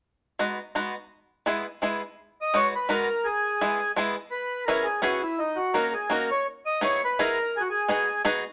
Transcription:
0.39 G#3 B3 D#4 F#4
0.75 G#3 B3 D#4 F#4
1.46 G#3 B3 E4 G#4
1.82 G#3 B3 E4 G#4
2.41 D#5
2.54 G#3 B3 D#4 F#4 C#5
2.75 B4
2.89 G#3 B3 D#4 F#4 A#4
3.24 G#4
3.61 G#3 B3 E4 G#4
3.96 G#3 B3 E4 G#4
4.31 B4
4.66 B3 C#4 E4 G#4 A#4
4.84 G#4
5.02 B3 C#4 E4 F#4 G#4
5.22 E4
5.39 D#4
5.56 F#4
5.74 A#3 C#4 D#4 F#4 A#4
5.93 G#4
6.10 A#3 C#4 D#4 F#4 A#4
6.31 C#5
6.66 D#5
6.81 B3 D#4 E4 G#4 C#5
7.05 B4
7.19 B3 D#4 E4 G#4 A#4
7.57 G#4
7.61 F#4
7.70 G#4
7.88 B3 D#4 F#4 G#4
8.25 B3 D#4 F#4 G#4

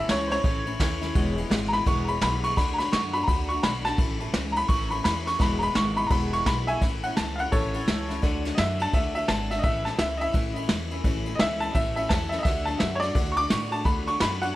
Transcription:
0.08 C#2 E3 A3 C#4 E4 C#5, snare, ride
0.27 E4 C5, snare, ride
0.32 A3 C#4 C#5
0.43 A1 A2 E3 A3 C#4 E4, kick, ride
0.66 A3 C#4 E4, ride
0.79 D#2 E3 A3 C#4 E4, kick, snare, ride
1.02 A3 C#4 E4, snare, ride
1.14 E1 E2 B2 E3 G#3 B3 E4, kick, ride
1.36 E3 G#3 B3 E4, ride
1.49 G#1 E3 G#3 B3 E4, snare, ride
1.68 E4 A#5
1.72 E3 G#3 B3 B5, snare, ride
1.86 E1 E2 B2 E3 G#3 B3 E4 C#6, kick, ride
2.08 E3 G#3 B3 E4 B5, ride
2.21 B1 E3 G#3 B3 E4 B5, snare, ride
2.43 E3 G#3 B3 E4 C#6, ride
2.56 D2 D3 A3 D4 F#4 B5, kick, snare, ride
2.74 A#5
2.78 A3 D4 F#4 B5, snare, ride
2.92 F#2 D3 A3 D4 F#4 C#6, snare, ride
3.13 A3 D4 F#4 B5, ride
3.23 D3 A#5
3.27 D2 A3 D4 F#4 B5, kick, ride
3.49 D4 F#4 C#6, ride
3.53 A3
3.63 B1 D3 A3 D4 F#4 B5, snare, ride
3.85 A3 D4 F#4 A5, snare, ride
3.98 A1 A2 E3 A3 C#4 E4, kick, ride
4.19 A3 C#4 E4, ride
4.33 C#2 E3 A3 C#4 E4, snare, ride
4.52 E4 A#5, ride
4.57 A3 C#4 B5
4.68 A1 A2 E3 A3 C#4 E4 C#6, kick, ride
4.90 A3 C#4 E4 B5, ride
5.03 E2 E3 A3 C#4 E4 B5, snare, ride
5.25 A3 C#4 E4 C#6, snare, ride
5.39 E1 E2 B2 E3 G#3 B3 E4 B5, kick, snare, ride
5.59 B3 E4 A#5, ride
5.63 E3 G#3 B5
5.75 G#1 E3 G#3 B3 E4 C#6, snare, ride
5.96 E3 G#3 B3 E4 B5, ride
6.07 E2 B2 E3 A#5, kick, ride
6.11 E1 G#3 B3 E4 B5
6.32 E3 G#3 B3 E4 C#6, ride
6.46 B1 E3 G#3 B3 E4 B5, kick, snare, ride
6.67 E3 G#3 B3 E4 E5 G#5, ride
6.81 A1 A2 E3 A3 C#4 E4, kick, snare, ride
7.03 C#4 E4 F#5, ride
7.07 A3
7.17 C#2 E3 A3 C#4 E4 A5, snare, ride
7.36 E4 F5, ride
7.40 A3 C#4 F#5
7.52 A1 A2 E3 A3 C#4 E4 A4 C#5, kick, ride
7.74 A3 C#4 E4, ride
7.87 C#2 E3 A3 C#4 E4, snare, ride
8.09 A3 C#4 E4, snare, ride
8.22 D2 D3 A3 D4 F#4, kick, snare, ride
8.44 A3 D4 F#4, snare, ride
8.55 F#2 D3 A3 D#5 E5, snare, ride
8.60 D4 F#4
8.79 A3 D4 F#4 A5, ride
8.92 D2 D3 A3 D4 F#4 E5, kick, ride
9.14 A3 D4 F#4 E5, ride
9.27 G#1 D3 A3 D4 F#4 A5, snare, ride
9.50 A3 D4 F#4 E5, snare, ride
9.59 D#5
9.63 A1 A2 E3 A3 C#4 E4 E5, kick, ride
9.84 A3 C#4 E4 A5, snare, ride
9.97 C#2 E3 A3 C#4 E4 E5, snare, ride
10.17 C#4 E4 D#5 E5, ride
10.22 A3
10.33 A1 A2 E3 A3 C#4 E4, kick, ride
10.55 A3 C#4 E4, ride
10.67 E2 E3 A3 C#4 E4, snare, ride
10.90 A3 C#4 E4, ride
11.04 A1 A2 E3 A3 C#4 E4, kick, ride
11.26 A3 C#4 E4, ride
11.35 E3 D#5
11.39 C#2 A3 C#4 E4 E5, snare, ride
11.60 A3 C#4 E4 A5, ride
11.73 A1 A2 E3 A3 C#4 E4 E5, kick, ride
11.96 A3 C#4 E4 E5, ride
12.09 E2 E3 A3 C#4 E4 A5, kick, snare, ride
12.29 C#4 E4 E5, snare, ride
12.35 A3 D#5
12.43 D2 D3 A3 D4 E5, kick, snare, ride
12.47 F#4
12.65 D4 F#4 A5, ride
12.70 A3
12.79 F#2 D3 A3 D4 F#4 E5, snare, ride
12.95 C#5
13.00 D4 F#4 D5, snare, ride
13.04 A3
13.15 D2 D3 A3 D4 F#4, kick, ride
13.32 C#6
13.36 A3 D4 F#4 D6, ride
13.49 A2 D3 A3 D4 F#4 C#6, snare, ride
13.71 A3 D4 F#4 A5, ride
13.84 D2 D3 A3 D4 F#4 B5, kick, ride
14.06 A3 D4 F#4 C#6, ride
14.20 F#2 D3 A3 D4 F#4 B5, snare, ride
14.41 A3 D4 F#4 F#5, ride

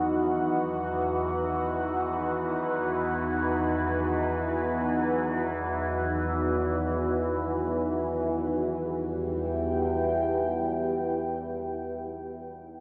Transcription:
Already playing: E2 E3 D#4 F#4 B4 F#5
8.32 E2 E3 E4
8.46 G4
8.61 B4
8.76 G5

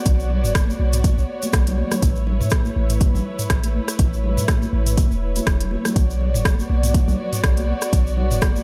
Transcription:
Already playing: B3 F#4 C#5 D5
0.05 B1, kick, closed hi-hat, shaker
0.20 shaker
0.30 low conga
0.44 F#1, mid tom, shaker
0.55 kick, cross-stick, closed hi-hat, high conga, shaker
0.69 high conga, shaker
0.80 B1
0.93 closed hi-hat, mid tom, shaker
1.03 kick, closed hi-hat, high conga, shaker
1.18 B1, shaker
1.42 closed hi-hat, high conga, shaker
1.53 B1, kick, cross-stick, closed hi-hat, shaker
1.67 closed hi-hat, low conga, shaker
1.78 high conga
1.91 cross-stick, closed hi-hat, high conga, low conga, shaker
2.02 A1 A3 E4 B4, kick, closed hi-hat, shaker
2.16 shaker
2.27 low conga
2.41 A2, mid tom, shaker
2.50 kick, cross-stick, closed hi-hat, high conga, shaker
2.65 high conga, shaker
2.76 A1
2.90 closed hi-hat, mid tom, shaker
3.01 kick, closed hi-hat, high conga, shaker
3.14 A1, low conga, shaker
3.39 closed hi-hat, mid tom, shaker
3.50 A1, kick, cross-stick, closed hi-hat, shaker
3.63 closed hi-hat, high conga, shaker
3.88 cross-stick, closed hi-hat, shaker
3.99 A1, kick, closed hi-hat, shaker
4.13 shaker
4.24 low conga
4.37 A2, mid tom, shaker
4.48 kick, cross-stick, closed hi-hat, high conga, shaker
4.62 high conga, shaker
4.73 A1
4.86 closed hi-hat, mid tom, shaker
4.97 kick, closed hi-hat, high conga, shaker
5.11 E1, shaker
5.36 closed hi-hat, high conga, shaker
5.47 E1, kick, cross-stick, closed hi-hat, shaker
5.60 closed hi-hat, low conga, shaker
5.71 high conga
5.85 cross-stick, closed hi-hat, high conga, low conga, shaker
5.96 B1 B3 F#4 C#5 D5, kick, closed hi-hat, shaker
6.10 shaker
6.21 low conga
6.34 F#1, mid tom, shaker
6.45 kick, cross-stick, closed hi-hat, high conga, shaker
6.59 high conga, shaker
6.70 B1
6.83 closed hi-hat, mid tom, shaker
6.94 kick, closed hi-hat, high conga, shaker
7.08 B1, low conga, shaker
7.33 closed hi-hat, mid tom, shaker
7.44 B1, kick, cross-stick, closed hi-hat, shaker
7.57 closed hi-hat, high conga, shaker
7.82 cross-stick, closed hi-hat, shaker
7.93 B1, kick, closed hi-hat, shaker
8.07 shaker
8.17 low conga
8.31 F#1, mid tom, shaker
8.42 kick, cross-stick, closed hi-hat, high conga, shaker
8.56 high conga, shaker

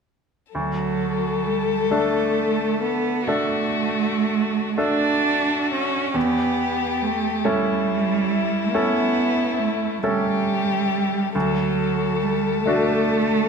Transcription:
0.53 D2 F#3 A4
1.46 G3
1.90 A3 D4 A4
2.81 B3
3.27 A3 D4 F#4 A4
4.78 A3 D4 F#4 A4
5.72 C#4
6.14 E2 B3 G4
7.02 A3
7.44 G3 A3 C#4 E4 A4
8.73 A3 B3 C#4 A4
9.59 A3
10.03 G3 A3 C#4 G4 A4
11.35 D2 F#3 A4
12.23 G3
12.64 A3 D4 F#4

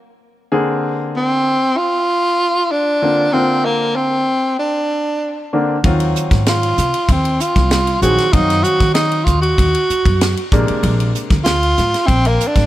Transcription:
0.52 D3 A#3 C4 G#4
1.16 C4
1.78 F4
2.71 D4
3.02 D3 A#3 C4 F4
3.33 D3 A#3 C4 F4
3.65 A#3
3.96 C4
4.59 D4
5.53 D3 A#3 C4 D4
5.84 D#2 D#3 F#3 C4 F4, kick, ride
6.00 ride
6.16 hi-hat pedal
6.31 G#2, kick, snare, ride
6.46 F4, snare, ride
6.63 ride
6.78 C3, snare, hi-hat pedal
6.94 ride
7.09 D#2 C4, kick, ride
7.25 ride
7.40 F4, hi-hat pedal
7.56 C2, kick, snare, ride
7.71 snare, ride
7.87 ride
8.02 A#1 D#3 F#3 C4 F#4 G#4, hi-hat pedal
8.18 snare, ride
8.33 F#2 D#3 F#3 C4 D#4 F5, kick, ride
8.50 snare, ride
8.63 F#4, hi-hat pedal
8.80 D#3, kick, snare, ride
8.94 D#4, snare, ride
9.11 ride
9.25 D#2 F4, kick, hi-hat pedal
9.42 F#4, ride
9.58 D#2, kick, ride
9.74 ride
9.90 muted upright bass stroke, hi-hat pedal
10.05 F#2, kick, ride
10.21 snare, ride
10.37 ride
10.52 A#1 C3 G#3 A#3 D4, kick, hi-hat pedal
10.68 muted upright bass stroke, ride
10.83 A#1, ride
11.00 ride
11.15 hi-hat pedal
11.30 D2, kick, snare, ride
11.44 F4, snare, ride
11.63 ride
11.77 G#2, snare, hi-hat pedal
11.94 snare, ride
12.07 A#1 C4, kick, ride
12.25 A#3, ride
12.40 hi-hat pedal
12.47 D4
12.56 G#1, kick, snare, ride

